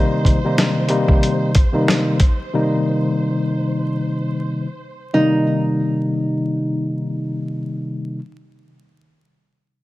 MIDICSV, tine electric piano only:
0, 0, Header, 1, 2, 480
1, 0, Start_track
1, 0, Key_signature, -3, "minor"
1, 0, Tempo, 652174
1, 1863, Time_signature, 4, 2, 24, 8
1, 7238, End_track
2, 0, Start_track
2, 0, Title_t, "Tine electric piano"
2, 0, Program_c, 0, 4
2, 0, Note_on_c, 0, 48, 100
2, 0, Note_on_c, 0, 51, 93
2, 0, Note_on_c, 0, 55, 90
2, 0, Note_on_c, 0, 58, 91
2, 0, Note_on_c, 0, 63, 113
2, 280, Note_off_c, 0, 48, 0
2, 281, Note_off_c, 0, 51, 0
2, 283, Note_off_c, 0, 55, 0
2, 285, Note_off_c, 0, 58, 0
2, 287, Note_off_c, 0, 63, 0
2, 323, Note_on_c, 0, 48, 90
2, 327, Note_on_c, 0, 51, 93
2, 331, Note_on_c, 0, 55, 81
2, 335, Note_on_c, 0, 58, 85
2, 338, Note_on_c, 0, 63, 106
2, 641, Note_off_c, 0, 48, 0
2, 642, Note_off_c, 0, 51, 0
2, 644, Note_off_c, 0, 55, 0
2, 646, Note_off_c, 0, 58, 0
2, 648, Note_off_c, 0, 63, 0
2, 651, Note_on_c, 0, 48, 96
2, 654, Note_on_c, 0, 51, 85
2, 658, Note_on_c, 0, 55, 85
2, 662, Note_on_c, 0, 58, 80
2, 666, Note_on_c, 0, 63, 98
2, 1103, Note_off_c, 0, 48, 0
2, 1105, Note_off_c, 0, 51, 0
2, 1107, Note_off_c, 0, 55, 0
2, 1108, Note_off_c, 0, 58, 0
2, 1110, Note_off_c, 0, 63, 0
2, 1270, Note_on_c, 0, 48, 95
2, 1274, Note_on_c, 0, 51, 88
2, 1278, Note_on_c, 0, 55, 86
2, 1281, Note_on_c, 0, 58, 91
2, 1285, Note_on_c, 0, 63, 102
2, 1594, Note_off_c, 0, 48, 0
2, 1596, Note_off_c, 0, 51, 0
2, 1598, Note_off_c, 0, 55, 0
2, 1600, Note_off_c, 0, 58, 0
2, 1601, Note_off_c, 0, 63, 0
2, 1863, Note_on_c, 0, 48, 92
2, 1867, Note_on_c, 0, 51, 93
2, 1871, Note_on_c, 0, 55, 88
2, 1875, Note_on_c, 0, 58, 80
2, 1878, Note_on_c, 0, 63, 101
2, 3421, Note_off_c, 0, 48, 0
2, 3423, Note_off_c, 0, 51, 0
2, 3425, Note_off_c, 0, 55, 0
2, 3427, Note_off_c, 0, 58, 0
2, 3429, Note_off_c, 0, 63, 0
2, 3779, Note_on_c, 0, 48, 86
2, 3781, Note_on_c, 0, 51, 79
2, 3783, Note_on_c, 0, 55, 81
2, 3785, Note_on_c, 0, 58, 83
2, 3786, Note_on_c, 0, 63, 94
2, 6020, Note_off_c, 0, 48, 0
2, 6022, Note_off_c, 0, 51, 0
2, 6024, Note_off_c, 0, 55, 0
2, 6026, Note_off_c, 0, 58, 0
2, 6027, Note_off_c, 0, 63, 0
2, 7238, End_track
0, 0, End_of_file